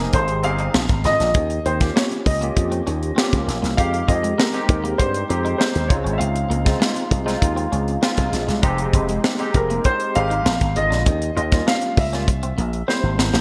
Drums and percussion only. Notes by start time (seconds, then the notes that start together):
0.13 kick, closed hi-hat
0.28 closed hi-hat
0.43 closed hi-hat
0.59 closed hi-hat
0.74 snare
0.89 kick, closed hi-hat
1.04 snare, closed hi-hat
1.20 snare, closed hi-hat
1.34 kick, closed hi-hat
1.50 closed hi-hat
1.66 closed hi-hat
1.80 kick, snare, closed hi-hat
1.97 snare
2.11 closed hi-hat
2.26 kick, open hi-hat
2.42 closed hi-hat
2.57 kick, closed hi-hat
2.72 closed hi-hat
2.87 closed hi-hat
3.03 closed hi-hat
3.18 snare
3.33 kick, closed hi-hat
3.49 snare, closed hi-hat
3.64 snare, closed hi-hat
3.78 kick, closed hi-hat
3.94 closed hi-hat
4.08 kick, closed hi-hat
4.24 closed hi-hat
4.40 snare
4.54 closed hi-hat
4.69 kick, closed hi-hat
4.85 closed hi-hat
5.00 kick, closed hi-hat
5.14 closed hi-hat
5.30 closed hi-hat
5.46 closed hi-hat
5.61 snare
5.75 closed hi-hat
5.90 kick, closed hi-hat
6.06 closed hi-hat
6.21 closed hi-hat
6.36 closed hi-hat
6.51 closed hi-hat
6.66 kick, snare, closed hi-hat
6.82 snare
6.96 closed hi-hat
7.11 kick, closed hi-hat
7.28 snare, closed hi-hat
7.42 kick, closed hi-hat
7.57 closed hi-hat
7.73 closed hi-hat
7.88 closed hi-hat
8.03 snare
8.17 kick, closed hi-hat
8.33 snare, closed hi-hat
8.49 snare, closed hi-hat
8.63 kick, closed hi-hat
8.78 closed hi-hat
8.93 kick, closed hi-hat
9.09 closed hi-hat
9.24 snare
9.39 closed hi-hat
9.54 kick, closed hi-hat
9.70 closed hi-hat
9.84 kick, closed hi-hat
10.00 closed hi-hat
10.15 closed hi-hat
10.31 closed hi-hat
10.46 snare
10.61 kick, closed hi-hat
10.76 closed hi-hat
10.92 snare, closed hi-hat
11.06 kick, closed hi-hat
11.22 closed hi-hat
11.37 closed hi-hat
11.52 kick, snare, closed hi-hat
11.68 snare
11.82 closed hi-hat
11.97 kick, open hi-hat
12.13 snare, closed hi-hat
12.28 kick, closed hi-hat
12.43 closed hi-hat
12.58 closed hi-hat
12.73 closed hi-hat
12.89 snare
13.19 snare
13.34 snare